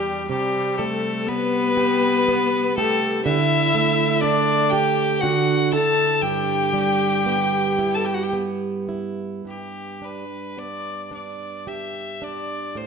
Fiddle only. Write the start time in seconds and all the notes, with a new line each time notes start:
Already playing: G4
0.30 G4
0.78 A4
1.28 B4
2.76 A4
3.25 E5
4.21 D5
4.70 G5
5.20 F#5
5.72 A5
6.22 G5
7.95 A5
8.05 G5
8.15 F#5
8.23 G5
9.48 G4
10.04 B4
10.59 D5
11.14 D5
11.68 E5
12.23 D5
12.77 C5